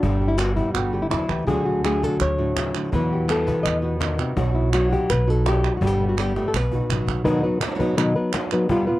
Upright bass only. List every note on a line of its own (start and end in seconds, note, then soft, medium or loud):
0.03 0.60 G1 medium
0.74 1.03 G1 medium
1.12 1.28 E2 medium
1.29 1.46 D2 medium
1.47 2.03 D2 medium
2.20 2.77 D2 medium
2.93 3.49 E2 medium
3.65 4.21 E2 medium
4.36 4.93 B1 medium
5.10 5.66 B1 medium
5.81 6.37 G1 medium
6.54 6.82 B1 medium
6.90 7.06 A1 medium
7.06 7.23 B1 medium